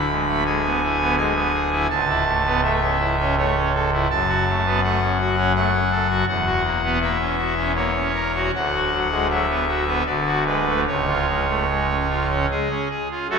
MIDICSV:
0, 0, Header, 1, 2, 480
1, 0, Start_track
1, 0, Key_signature, 3, "major"
1, 0, Tempo, 729040
1, 1252, Time_signature, 3, 2, 24, 8
1, 2702, Key_signature, 3, "minor"
1, 5096, Tempo, 770218
1, 6536, Tempo, 809717
1, 8513, End_track
2, 0, Start_track
2, 0, Title_t, "Pipe organ"
2, 0, Program_c, 0, 19
2, 0, Note_on_c, 0, 26, 79
2, 0, Note_on_c, 0, 38, 76
2, 0, Note_on_c, 0, 83, 127
2, 61, Note_on_c, 0, 56, 67
2, 167, Note_off_c, 0, 56, 0
2, 183, Note_on_c, 0, 57, 55
2, 283, Note_off_c, 0, 57, 0
2, 285, Note_off_c, 0, 83, 0
2, 301, Note_on_c, 0, 80, 121
2, 302, Note_on_c, 0, 56, 66
2, 407, Note_off_c, 0, 56, 0
2, 423, Note_on_c, 0, 59, 58
2, 527, Note_off_c, 0, 59, 0
2, 539, Note_on_c, 0, 64, 63
2, 644, Note_off_c, 0, 64, 0
2, 660, Note_on_c, 0, 59, 70
2, 758, Note_off_c, 0, 80, 0
2, 763, Note_off_c, 0, 59, 0
2, 771, Note_on_c, 0, 56, 65
2, 772, Note_on_c, 0, 80, 119
2, 878, Note_off_c, 0, 56, 0
2, 892, Note_on_c, 0, 59, 68
2, 998, Note_off_c, 0, 59, 0
2, 1009, Note_on_c, 0, 68, 69
2, 1117, Note_off_c, 0, 68, 0
2, 1127, Note_on_c, 0, 64, 59
2, 1227, Note_off_c, 0, 38, 0
2, 1228, Note_off_c, 0, 26, 0
2, 1231, Note_off_c, 0, 64, 0
2, 1236, Note_off_c, 0, 80, 0
2, 1248, Note_on_c, 0, 25, 84
2, 1249, Note_on_c, 0, 37, 88
2, 1249, Note_on_c, 0, 81, 125
2, 1373, Note_on_c, 0, 64, 64
2, 1480, Note_off_c, 0, 64, 0
2, 1490, Note_on_c, 0, 57, 69
2, 1598, Note_off_c, 0, 57, 0
2, 1611, Note_on_c, 0, 59, 61
2, 1713, Note_off_c, 0, 59, 0
2, 1716, Note_off_c, 0, 81, 0
2, 1733, Note_on_c, 0, 76, 117
2, 1734, Note_on_c, 0, 57, 68
2, 1841, Note_off_c, 0, 57, 0
2, 1853, Note_on_c, 0, 61, 62
2, 1961, Note_off_c, 0, 61, 0
2, 1970, Note_on_c, 0, 64, 67
2, 2081, Note_off_c, 0, 64, 0
2, 2101, Note_on_c, 0, 61, 74
2, 2206, Note_off_c, 0, 76, 0
2, 2209, Note_off_c, 0, 61, 0
2, 2220, Note_on_c, 0, 57, 68
2, 2221, Note_on_c, 0, 73, 103
2, 2329, Note_off_c, 0, 57, 0
2, 2341, Note_on_c, 0, 61, 67
2, 2427, Note_off_c, 0, 73, 0
2, 2449, Note_off_c, 0, 61, 0
2, 2460, Note_on_c, 0, 69, 73
2, 2568, Note_off_c, 0, 69, 0
2, 2582, Note_on_c, 0, 64, 65
2, 2674, Note_off_c, 0, 25, 0
2, 2674, Note_off_c, 0, 37, 0
2, 2684, Note_off_c, 0, 64, 0
2, 2698, Note_on_c, 0, 30, 88
2, 2698, Note_on_c, 0, 81, 127
2, 2699, Note_on_c, 0, 42, 83
2, 2817, Note_on_c, 0, 66, 69
2, 2925, Note_off_c, 0, 66, 0
2, 2942, Note_on_c, 0, 57, 69
2, 3047, Note_off_c, 0, 57, 0
2, 3063, Note_on_c, 0, 59, 57
2, 3162, Note_off_c, 0, 59, 0
2, 3162, Note_off_c, 0, 81, 0
2, 3180, Note_on_c, 0, 57, 67
2, 3180, Note_on_c, 0, 78, 120
2, 3285, Note_off_c, 0, 57, 0
2, 3303, Note_on_c, 0, 61, 59
2, 3405, Note_off_c, 0, 61, 0
2, 3419, Note_on_c, 0, 66, 65
2, 3522, Note_off_c, 0, 66, 0
2, 3533, Note_on_c, 0, 61, 74
2, 3636, Note_off_c, 0, 78, 0
2, 3637, Note_off_c, 0, 61, 0
2, 3655, Note_on_c, 0, 57, 71
2, 3656, Note_on_c, 0, 78, 127
2, 3758, Note_off_c, 0, 57, 0
2, 3770, Note_on_c, 0, 61, 66
2, 3875, Note_off_c, 0, 61, 0
2, 3890, Note_on_c, 0, 69, 70
2, 3996, Note_off_c, 0, 69, 0
2, 4011, Note_on_c, 0, 66, 61
2, 4100, Note_off_c, 0, 30, 0
2, 4101, Note_off_c, 0, 42, 0
2, 4112, Note_off_c, 0, 66, 0
2, 4118, Note_off_c, 0, 78, 0
2, 4130, Note_on_c, 0, 28, 82
2, 4132, Note_on_c, 0, 40, 79
2, 4133, Note_on_c, 0, 78, 127
2, 4251, Note_on_c, 0, 66, 66
2, 4359, Note_off_c, 0, 66, 0
2, 4371, Note_on_c, 0, 58, 68
2, 4479, Note_off_c, 0, 58, 0
2, 4497, Note_on_c, 0, 59, 61
2, 4597, Note_off_c, 0, 59, 0
2, 4601, Note_off_c, 0, 78, 0
2, 4613, Note_on_c, 0, 58, 65
2, 4613, Note_on_c, 0, 76, 124
2, 4720, Note_off_c, 0, 58, 0
2, 4735, Note_on_c, 0, 61, 62
2, 4842, Note_off_c, 0, 61, 0
2, 4855, Note_on_c, 0, 66, 65
2, 4963, Note_off_c, 0, 66, 0
2, 4977, Note_on_c, 0, 61, 69
2, 5085, Note_off_c, 0, 76, 0
2, 5086, Note_off_c, 0, 61, 0
2, 5102, Note_on_c, 0, 73, 113
2, 5104, Note_on_c, 0, 58, 65
2, 5209, Note_off_c, 0, 58, 0
2, 5222, Note_on_c, 0, 61, 65
2, 5331, Note_off_c, 0, 61, 0
2, 5346, Note_on_c, 0, 70, 67
2, 5455, Note_off_c, 0, 70, 0
2, 5473, Note_on_c, 0, 66, 61
2, 5565, Note_off_c, 0, 28, 0
2, 5566, Note_off_c, 0, 40, 0
2, 5575, Note_off_c, 0, 66, 0
2, 5576, Note_off_c, 0, 73, 0
2, 5596, Note_on_c, 0, 26, 84
2, 5599, Note_on_c, 0, 38, 83
2, 5599, Note_on_c, 0, 78, 120
2, 5717, Note_on_c, 0, 66, 60
2, 5819, Note_off_c, 0, 66, 0
2, 5830, Note_on_c, 0, 54, 62
2, 5933, Note_off_c, 0, 54, 0
2, 5948, Note_on_c, 0, 56, 52
2, 6045, Note_off_c, 0, 56, 0
2, 6051, Note_off_c, 0, 78, 0
2, 6069, Note_on_c, 0, 54, 64
2, 6071, Note_on_c, 0, 76, 112
2, 6170, Note_off_c, 0, 54, 0
2, 6182, Note_on_c, 0, 59, 54
2, 6286, Note_off_c, 0, 59, 0
2, 6303, Note_on_c, 0, 66, 61
2, 6407, Note_off_c, 0, 66, 0
2, 6419, Note_on_c, 0, 59, 64
2, 6516, Note_off_c, 0, 26, 0
2, 6518, Note_off_c, 0, 38, 0
2, 6521, Note_off_c, 0, 59, 0
2, 6529, Note_off_c, 0, 76, 0
2, 6540, Note_on_c, 0, 74, 107
2, 6541, Note_on_c, 0, 38, 79
2, 6543, Note_on_c, 0, 26, 76
2, 6658, Note_on_c, 0, 66, 57
2, 6742, Note_off_c, 0, 74, 0
2, 6765, Note_off_c, 0, 66, 0
2, 6779, Note_on_c, 0, 56, 60
2, 6779, Note_on_c, 0, 71, 91
2, 6887, Note_off_c, 0, 56, 0
2, 6898, Note_on_c, 0, 57, 49
2, 6987, Note_off_c, 0, 71, 0
2, 7003, Note_off_c, 0, 57, 0
2, 7009, Note_off_c, 0, 38, 0
2, 7011, Note_off_c, 0, 26, 0
2, 7018, Note_on_c, 0, 25, 76
2, 7019, Note_on_c, 0, 73, 101
2, 7020, Note_on_c, 0, 37, 75
2, 7144, Note_on_c, 0, 65, 58
2, 7253, Note_off_c, 0, 65, 0
2, 7265, Note_on_c, 0, 56, 58
2, 7374, Note_off_c, 0, 56, 0
2, 7385, Note_on_c, 0, 57, 52
2, 7488, Note_off_c, 0, 57, 0
2, 7503, Note_on_c, 0, 56, 59
2, 7612, Note_off_c, 0, 56, 0
2, 7625, Note_on_c, 0, 61, 50
2, 7733, Note_off_c, 0, 61, 0
2, 7747, Note_on_c, 0, 65, 55
2, 7855, Note_off_c, 0, 65, 0
2, 7866, Note_on_c, 0, 61, 62
2, 7962, Note_off_c, 0, 25, 0
2, 7962, Note_off_c, 0, 73, 0
2, 7963, Note_off_c, 0, 37, 0
2, 7969, Note_off_c, 0, 61, 0
2, 7990, Note_on_c, 0, 56, 59
2, 7991, Note_on_c, 0, 68, 98
2, 8096, Note_off_c, 0, 56, 0
2, 8105, Note_on_c, 0, 61, 61
2, 8213, Note_off_c, 0, 61, 0
2, 8214, Note_off_c, 0, 68, 0
2, 8226, Note_on_c, 0, 68, 60
2, 8332, Note_off_c, 0, 68, 0
2, 8350, Note_on_c, 0, 65, 52
2, 8446, Note_off_c, 0, 65, 0
2, 8459, Note_on_c, 0, 69, 113
2, 8460, Note_on_c, 0, 57, 57
2, 8461, Note_on_c, 0, 42, 70
2, 8461, Note_on_c, 0, 61, 57
2, 8461, Note_on_c, 0, 66, 59
2, 8462, Note_on_c, 0, 30, 68
2, 8513, Note_off_c, 0, 30, 0
2, 8513, Note_off_c, 0, 42, 0
2, 8513, Note_off_c, 0, 57, 0
2, 8513, Note_off_c, 0, 61, 0
2, 8513, Note_off_c, 0, 66, 0
2, 8513, Note_off_c, 0, 69, 0
2, 8513, End_track
0, 0, End_of_file